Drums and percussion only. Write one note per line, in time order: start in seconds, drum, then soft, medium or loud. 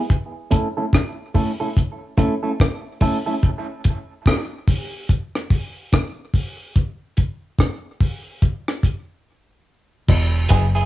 0.10 kick loud
0.10 hi-hat pedal medium
0.51 kick medium
0.51 closed hi-hat medium
0.93 kick loud
0.93 cross-stick loud
1.35 kick medium
1.35 open hi-hat medium
1.77 kick loud
1.77 hi-hat pedal medium
2.18 kick medium
2.18 closed hi-hat medium
2.60 kick loud
2.60 cross-stick loud
3.01 kick medium
3.01 open hi-hat medium
3.43 kick loud
3.43 hi-hat pedal medium
3.84 kick medium
3.84 closed hi-hat medium
4.26 kick medium
4.26 cross-stick loud
4.68 kick loud
4.68 open hi-hat medium
5.09 kick medium
5.09 hi-hat pedal medium
5.35 cross-stick medium
5.50 kick medium
5.50 open hi-hat medium
5.92 kick loud
5.92 cross-stick loud
5.92 hi-hat pedal medium
6.34 kick medium
6.34 open hi-hat medium
6.76 kick loud
6.76 hi-hat pedal medium
7.17 kick medium
7.17 closed hi-hat medium
7.59 kick loud
7.59 cross-stick medium
8.01 kick medium
8.01 open hi-hat medium
8.42 kick loud
8.42 hi-hat pedal medium
8.68 cross-stick medium
8.83 kick medium
8.83 closed hi-hat medium
10.08 kick loud
10.08 crash medium
10.49 kick loud
10.49 closed hi-hat medium